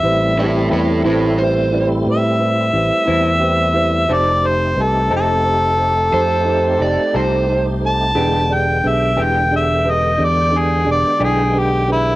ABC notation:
X:1
M:12/8
L:1/16
Q:3/8=59
K:Am
V:1 name="Harmonica"
e4 z8 e12 | d2 c2 A2 A12 z4 a2- | a2 g2 e2 g2 e2 ^d2 =d2 ^G2 d2 G2 =G2 E2 |]
V:2 name="Electric slide guitar"
z2 [EA]2 [EA]2 [EA]2 c3 z12 z | z12 c4 d2 c3 z3 | z24 |]
V:3 name="Upright piano"
[EGBc]2 [EGBd]2 [EGBd]2 [EGBc]2 [EGBc]2 [EGBd]2 [EGBc]2 [EGBc]2 [EGBc]2 [EGBc]2 [EGBcg]2 [EGBce]2 | [_EGAc]2 [EGAc]2 [EGAB]2 [EGAc]2 [EGAc]2 [EGAc]2 [EGAc]2 [EGAc]2 [EGAc]2 [EGAc]2 [EGAc]2 [EGAc]2 | [DG^GB]2 [D=G^Gd]2 [D=G^GB]2 [D=G^GB]2 [D=G^Gd]2 [D=G^GB]2 [D=G^Gd]2 [D=G^Gd]2 [D=G^Gd]2 [D=G^Gd]2 [D=G^GB]2 [D=G^GB]2 |]
V:4 name="Clean electric guitar"
z6 [A,,G,CE]2 z8 z2 [A,,G,CE]2 z4 | [F,C_EA]2 z4 [F,CEA]2 z8 z2 [F,CEA]2 z4 | [E,^G,D=G]2 z4 [E,^G,D=G]2 z8 z2 [E,^G,D=G]2 z4 |]
V:5 name="Tonewheel organ"
[G,A,CE]24 | [A,C_EG]24 | [D,^G,B,=g]24 |]
V:6 name="Fingered electric bass" clef=bass
A,,,4 E,,2 A,,,6 A,,4 A,,, z E,,6 | F,,,4 C,,2 F,,,6 F,,4 F,,, z C,,6 | E,,,4 B,,,2 E,,,6 E,,4 E,,, z B,,,6 |]